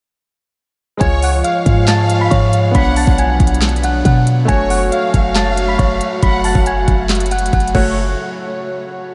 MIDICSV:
0, 0, Header, 1, 7, 480
1, 0, Start_track
1, 0, Key_signature, 3, "minor"
1, 0, Tempo, 434783
1, 1113, Time_signature, 4, 2, 24, 8
1, 10094, End_track
2, 0, Start_track
2, 0, Title_t, "Synth bell"
2, 0, Program_c, 0, 98
2, 1108, Note_on_c, 0, 80, 98
2, 1116, Note_on_c, 0, 92, 75
2, 1304, Note_off_c, 0, 80, 0
2, 1309, Note_off_c, 0, 92, 0
2, 1359, Note_on_c, 0, 78, 76
2, 1368, Note_on_c, 0, 90, 63
2, 1551, Note_off_c, 0, 78, 0
2, 1556, Note_off_c, 0, 90, 0
2, 1589, Note_on_c, 0, 77, 77
2, 1599, Note_on_c, 0, 89, 58
2, 2042, Note_off_c, 0, 77, 0
2, 2047, Note_off_c, 0, 89, 0
2, 2074, Note_on_c, 0, 81, 86
2, 2083, Note_on_c, 0, 93, 68
2, 2412, Note_off_c, 0, 81, 0
2, 2417, Note_off_c, 0, 93, 0
2, 2439, Note_on_c, 0, 83, 81
2, 2447, Note_on_c, 0, 95, 68
2, 2534, Note_off_c, 0, 83, 0
2, 2539, Note_off_c, 0, 95, 0
2, 2546, Note_on_c, 0, 85, 95
2, 2555, Note_on_c, 0, 73, 80
2, 3001, Note_off_c, 0, 85, 0
2, 3005, Note_off_c, 0, 73, 0
2, 3033, Note_on_c, 0, 83, 113
2, 3042, Note_on_c, 0, 95, 79
2, 3227, Note_off_c, 0, 83, 0
2, 3232, Note_off_c, 0, 95, 0
2, 3274, Note_on_c, 0, 81, 68
2, 3282, Note_on_c, 0, 93, 62
2, 3468, Note_off_c, 0, 81, 0
2, 3473, Note_off_c, 0, 93, 0
2, 3515, Note_on_c, 0, 80, 82
2, 3524, Note_on_c, 0, 92, 69
2, 3965, Note_off_c, 0, 80, 0
2, 3970, Note_off_c, 0, 92, 0
2, 4238, Note_on_c, 0, 78, 78
2, 4247, Note_on_c, 0, 90, 65
2, 4430, Note_off_c, 0, 78, 0
2, 4435, Note_off_c, 0, 90, 0
2, 4476, Note_on_c, 0, 78, 78
2, 4484, Note_on_c, 0, 90, 65
2, 4669, Note_off_c, 0, 78, 0
2, 4674, Note_off_c, 0, 90, 0
2, 4948, Note_on_c, 0, 80, 102
2, 4956, Note_on_c, 0, 92, 79
2, 5144, Note_off_c, 0, 80, 0
2, 5149, Note_off_c, 0, 92, 0
2, 5190, Note_on_c, 0, 78, 77
2, 5198, Note_on_c, 0, 90, 63
2, 5385, Note_off_c, 0, 78, 0
2, 5390, Note_off_c, 0, 90, 0
2, 5433, Note_on_c, 0, 77, 77
2, 5442, Note_on_c, 0, 89, 60
2, 5885, Note_off_c, 0, 77, 0
2, 5889, Note_off_c, 0, 89, 0
2, 5911, Note_on_c, 0, 81, 86
2, 5921, Note_on_c, 0, 93, 72
2, 6251, Note_off_c, 0, 81, 0
2, 6255, Note_off_c, 0, 93, 0
2, 6275, Note_on_c, 0, 83, 77
2, 6283, Note_on_c, 0, 95, 65
2, 6371, Note_off_c, 0, 83, 0
2, 6376, Note_off_c, 0, 95, 0
2, 6388, Note_on_c, 0, 85, 93
2, 6397, Note_on_c, 0, 73, 72
2, 6842, Note_off_c, 0, 85, 0
2, 6846, Note_off_c, 0, 73, 0
2, 6874, Note_on_c, 0, 83, 100
2, 6883, Note_on_c, 0, 95, 89
2, 7068, Note_off_c, 0, 83, 0
2, 7073, Note_off_c, 0, 95, 0
2, 7113, Note_on_c, 0, 81, 85
2, 7122, Note_on_c, 0, 93, 64
2, 7307, Note_off_c, 0, 81, 0
2, 7312, Note_off_c, 0, 93, 0
2, 7356, Note_on_c, 0, 80, 87
2, 7365, Note_on_c, 0, 92, 67
2, 7806, Note_off_c, 0, 80, 0
2, 7811, Note_off_c, 0, 92, 0
2, 8075, Note_on_c, 0, 78, 75
2, 8084, Note_on_c, 0, 90, 61
2, 8268, Note_off_c, 0, 78, 0
2, 8274, Note_off_c, 0, 90, 0
2, 8313, Note_on_c, 0, 78, 83
2, 8322, Note_on_c, 0, 90, 63
2, 8507, Note_off_c, 0, 78, 0
2, 8512, Note_off_c, 0, 90, 0
2, 8551, Note_on_c, 0, 90, 88
2, 8775, Note_off_c, 0, 90, 0
2, 10094, End_track
3, 0, Start_track
3, 0, Title_t, "Violin section"
3, 0, Program_c, 1, 48
3, 1112, Note_on_c, 1, 73, 119
3, 1564, Note_off_c, 1, 73, 0
3, 1594, Note_on_c, 1, 77, 92
3, 2989, Note_off_c, 1, 77, 0
3, 3032, Note_on_c, 1, 78, 118
3, 3484, Note_off_c, 1, 78, 0
3, 4952, Note_on_c, 1, 73, 109
3, 5404, Note_off_c, 1, 73, 0
3, 5434, Note_on_c, 1, 77, 94
3, 6829, Note_off_c, 1, 77, 0
3, 6874, Note_on_c, 1, 78, 102
3, 7325, Note_off_c, 1, 78, 0
3, 8553, Note_on_c, 1, 73, 88
3, 8776, Note_off_c, 1, 73, 0
3, 10094, End_track
4, 0, Start_track
4, 0, Title_t, "Grand piano"
4, 0, Program_c, 2, 0
4, 1075, Note_on_c, 2, 56, 63
4, 1114, Note_on_c, 2, 65, 63
4, 1152, Note_on_c, 2, 73, 73
4, 1329, Control_c, 2, 64, 127
4, 2975, Note_off_c, 2, 56, 0
4, 2995, Note_off_c, 2, 65, 0
4, 2995, Note_on_c, 2, 59, 65
4, 3015, Note_off_c, 2, 73, 0
4, 3033, Note_on_c, 2, 62, 65
4, 3045, Control_c, 2, 64, 0
4, 3072, Note_on_c, 2, 73, 76
4, 3222, Control_c, 2, 64, 127
4, 4895, Note_off_c, 2, 59, 0
4, 4915, Note_off_c, 2, 62, 0
4, 4915, Note_on_c, 2, 57, 72
4, 4935, Note_off_c, 2, 73, 0
4, 4954, Note_on_c, 2, 66, 69
4, 4967, Control_c, 2, 64, 0
4, 4992, Note_on_c, 2, 73, 72
4, 5185, Control_c, 2, 64, 127
4, 8490, Note_off_c, 2, 57, 0
4, 8509, Note_off_c, 2, 66, 0
4, 8528, Note_off_c, 2, 73, 0
4, 8553, Note_on_c, 2, 57, 83
4, 8553, Note_on_c, 2, 66, 80
4, 8553, Note_on_c, 2, 73, 94
4, 8567, Control_c, 2, 64, 0
4, 8668, Control_c, 2, 64, 127
4, 8776, Note_off_c, 2, 57, 0
4, 8776, Note_off_c, 2, 66, 0
4, 8776, Note_off_c, 2, 73, 0
4, 8807, Control_c, 2, 64, 0
4, 10094, End_track
5, 0, Start_track
5, 0, Title_t, "Analog synth pad"
5, 0, Program_c, 3, 89
5, 1113, Note_on_c, 3, 53, 78
5, 1114, Note_on_c, 3, 56, 74
5, 1114, Note_on_c, 3, 65, 91
5, 3014, Note_off_c, 3, 53, 0
5, 3014, Note_off_c, 3, 56, 0
5, 3014, Note_off_c, 3, 65, 0
5, 3033, Note_on_c, 3, 54, 74
5, 3033, Note_on_c, 3, 59, 78
5, 3033, Note_on_c, 3, 62, 86
5, 4934, Note_off_c, 3, 59, 0
5, 4934, Note_off_c, 3, 62, 0
5, 4954, Note_on_c, 3, 57, 75
5, 4954, Note_on_c, 3, 66, 90
5, 8509, Note_off_c, 3, 54, 0
5, 8517, Note_off_c, 3, 66, 0
5, 8518, Note_off_c, 3, 57, 0
5, 8553, Note_on_c, 3, 49, 71
5, 8553, Note_on_c, 3, 54, 68
5, 8553, Note_on_c, 3, 57, 68
5, 8553, Note_on_c, 3, 66, 79
5, 8776, Note_off_c, 3, 49, 0
5, 8776, Note_off_c, 3, 54, 0
5, 8776, Note_off_c, 3, 57, 0
5, 8776, Note_off_c, 3, 66, 0
5, 10094, End_track
6, 0, Start_track
6, 0, Title_t, "808-style bass"
6, 0, Program_c, 4, 38
6, 1113, Note_on_c, 4, 37, 113
6, 1574, Note_off_c, 4, 37, 0
6, 1834, Note_on_c, 4, 44, 106
6, 2525, Note_off_c, 4, 44, 0
6, 2553, Note_on_c, 4, 44, 107
6, 3014, Note_off_c, 4, 44, 0
6, 3033, Note_on_c, 4, 35, 110
6, 3379, Note_off_c, 4, 35, 0
6, 3393, Note_on_c, 4, 35, 103
6, 3739, Note_off_c, 4, 35, 0
6, 3753, Note_on_c, 4, 35, 106
6, 4444, Note_off_c, 4, 35, 0
6, 4473, Note_on_c, 4, 47, 110
6, 4934, Note_off_c, 4, 47, 0
6, 4953, Note_on_c, 4, 30, 112
6, 5414, Note_off_c, 4, 30, 0
6, 5673, Note_on_c, 4, 30, 102
6, 6364, Note_off_c, 4, 30, 0
6, 6393, Note_on_c, 4, 30, 109
6, 6623, Note_off_c, 4, 30, 0
6, 6873, Note_on_c, 4, 30, 105
6, 7219, Note_off_c, 4, 30, 0
6, 7233, Note_on_c, 4, 30, 98
6, 7579, Note_off_c, 4, 30, 0
6, 7593, Note_on_c, 4, 30, 108
6, 8285, Note_off_c, 4, 30, 0
6, 8312, Note_on_c, 4, 30, 110
6, 8543, Note_off_c, 4, 30, 0
6, 8553, Note_on_c, 4, 30, 108
6, 9000, Note_off_c, 4, 30, 0
6, 10094, End_track
7, 0, Start_track
7, 0, Title_t, "Drums"
7, 1113, Note_on_c, 9, 36, 117
7, 1113, Note_on_c, 9, 42, 75
7, 1224, Note_off_c, 9, 36, 0
7, 1224, Note_off_c, 9, 42, 0
7, 1352, Note_on_c, 9, 46, 91
7, 1462, Note_off_c, 9, 46, 0
7, 1595, Note_on_c, 9, 42, 78
7, 1705, Note_off_c, 9, 42, 0
7, 1834, Note_on_c, 9, 36, 95
7, 1834, Note_on_c, 9, 42, 72
7, 1944, Note_off_c, 9, 36, 0
7, 1944, Note_off_c, 9, 42, 0
7, 2073, Note_on_c, 9, 38, 123
7, 2073, Note_on_c, 9, 39, 98
7, 2074, Note_on_c, 9, 42, 78
7, 2183, Note_off_c, 9, 38, 0
7, 2183, Note_off_c, 9, 39, 0
7, 2185, Note_off_c, 9, 42, 0
7, 2314, Note_on_c, 9, 42, 80
7, 2425, Note_off_c, 9, 42, 0
7, 2553, Note_on_c, 9, 36, 91
7, 2555, Note_on_c, 9, 42, 68
7, 2663, Note_off_c, 9, 36, 0
7, 2666, Note_off_c, 9, 42, 0
7, 2793, Note_on_c, 9, 42, 71
7, 2904, Note_off_c, 9, 42, 0
7, 3033, Note_on_c, 9, 36, 117
7, 3033, Note_on_c, 9, 42, 75
7, 3144, Note_off_c, 9, 36, 0
7, 3144, Note_off_c, 9, 42, 0
7, 3272, Note_on_c, 9, 46, 85
7, 3382, Note_off_c, 9, 46, 0
7, 3393, Note_on_c, 9, 36, 112
7, 3503, Note_off_c, 9, 36, 0
7, 3515, Note_on_c, 9, 42, 80
7, 3625, Note_off_c, 9, 42, 0
7, 3753, Note_on_c, 9, 36, 94
7, 3753, Note_on_c, 9, 42, 74
7, 3833, Note_off_c, 9, 42, 0
7, 3833, Note_on_c, 9, 42, 66
7, 3864, Note_off_c, 9, 36, 0
7, 3913, Note_off_c, 9, 42, 0
7, 3913, Note_on_c, 9, 42, 60
7, 3992, Note_on_c, 9, 38, 122
7, 3992, Note_on_c, 9, 39, 97
7, 3993, Note_off_c, 9, 42, 0
7, 3993, Note_on_c, 9, 42, 55
7, 4073, Note_off_c, 9, 42, 0
7, 4073, Note_on_c, 9, 42, 49
7, 4103, Note_off_c, 9, 38, 0
7, 4103, Note_off_c, 9, 39, 0
7, 4153, Note_off_c, 9, 42, 0
7, 4153, Note_on_c, 9, 42, 43
7, 4234, Note_off_c, 9, 42, 0
7, 4234, Note_on_c, 9, 42, 76
7, 4344, Note_off_c, 9, 42, 0
7, 4473, Note_on_c, 9, 36, 90
7, 4475, Note_on_c, 9, 42, 71
7, 4583, Note_off_c, 9, 36, 0
7, 4586, Note_off_c, 9, 42, 0
7, 4713, Note_on_c, 9, 42, 70
7, 4823, Note_off_c, 9, 42, 0
7, 4953, Note_on_c, 9, 36, 119
7, 4953, Note_on_c, 9, 42, 74
7, 5063, Note_off_c, 9, 36, 0
7, 5064, Note_off_c, 9, 42, 0
7, 5192, Note_on_c, 9, 46, 89
7, 5302, Note_off_c, 9, 46, 0
7, 5435, Note_on_c, 9, 42, 81
7, 5545, Note_off_c, 9, 42, 0
7, 5673, Note_on_c, 9, 36, 95
7, 5674, Note_on_c, 9, 42, 74
7, 5784, Note_off_c, 9, 36, 0
7, 5784, Note_off_c, 9, 42, 0
7, 5912, Note_on_c, 9, 39, 97
7, 5913, Note_on_c, 9, 38, 120
7, 5914, Note_on_c, 9, 42, 78
7, 6023, Note_off_c, 9, 38, 0
7, 6023, Note_off_c, 9, 39, 0
7, 6025, Note_off_c, 9, 42, 0
7, 6154, Note_on_c, 9, 42, 77
7, 6265, Note_off_c, 9, 42, 0
7, 6393, Note_on_c, 9, 36, 95
7, 6395, Note_on_c, 9, 42, 69
7, 6503, Note_off_c, 9, 36, 0
7, 6506, Note_off_c, 9, 42, 0
7, 6633, Note_on_c, 9, 42, 73
7, 6743, Note_off_c, 9, 42, 0
7, 6873, Note_on_c, 9, 36, 122
7, 6873, Note_on_c, 9, 42, 77
7, 6983, Note_off_c, 9, 36, 0
7, 6984, Note_off_c, 9, 42, 0
7, 7111, Note_on_c, 9, 46, 86
7, 7222, Note_off_c, 9, 46, 0
7, 7233, Note_on_c, 9, 36, 110
7, 7343, Note_off_c, 9, 36, 0
7, 7354, Note_on_c, 9, 42, 77
7, 7465, Note_off_c, 9, 42, 0
7, 7593, Note_on_c, 9, 36, 92
7, 7593, Note_on_c, 9, 42, 70
7, 7703, Note_off_c, 9, 36, 0
7, 7704, Note_off_c, 9, 42, 0
7, 7832, Note_on_c, 9, 38, 123
7, 7832, Note_on_c, 9, 39, 97
7, 7833, Note_on_c, 9, 42, 67
7, 7893, Note_off_c, 9, 42, 0
7, 7893, Note_on_c, 9, 42, 67
7, 7942, Note_off_c, 9, 38, 0
7, 7942, Note_off_c, 9, 39, 0
7, 7953, Note_off_c, 9, 42, 0
7, 7953, Note_on_c, 9, 42, 67
7, 8013, Note_off_c, 9, 42, 0
7, 8013, Note_on_c, 9, 42, 64
7, 8073, Note_off_c, 9, 42, 0
7, 8073, Note_on_c, 9, 42, 66
7, 8153, Note_off_c, 9, 42, 0
7, 8153, Note_on_c, 9, 42, 67
7, 8233, Note_off_c, 9, 42, 0
7, 8233, Note_on_c, 9, 42, 68
7, 8313, Note_off_c, 9, 42, 0
7, 8313, Note_on_c, 9, 36, 95
7, 8313, Note_on_c, 9, 42, 42
7, 8393, Note_off_c, 9, 42, 0
7, 8393, Note_on_c, 9, 42, 47
7, 8423, Note_off_c, 9, 36, 0
7, 8473, Note_off_c, 9, 42, 0
7, 8473, Note_on_c, 9, 42, 54
7, 8553, Note_on_c, 9, 36, 108
7, 8553, Note_on_c, 9, 49, 87
7, 8584, Note_off_c, 9, 42, 0
7, 8664, Note_off_c, 9, 36, 0
7, 8664, Note_off_c, 9, 49, 0
7, 10094, End_track
0, 0, End_of_file